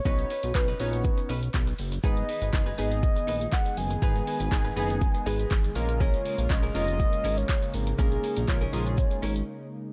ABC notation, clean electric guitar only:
X:1
M:4/4
L:1/16
Q:1/4=121
K:Bbphr
V:1 name="Clean electric guitar"
[^C^D=B]2 [CDB] [CDB] z [CDB] [CDB]2 z2 [CDB]2 z4 | [EAc]2 [EAc] [EAc] z [EAc] [EAc]2 z2 [EAc]2 z4 | [EAc]2 [EAc] [EAc] z [EAc] [EAc]2 z2 [EAc] [EAc] z4 | [DAB]2 [DAB] [DAB] z [DAB] [DAB]2 z2 [DAB]2 z4 |
[DAB]2 [DAB] [DAB] z [DAB] [DAB]2 z2 [DAB]2 z4 |]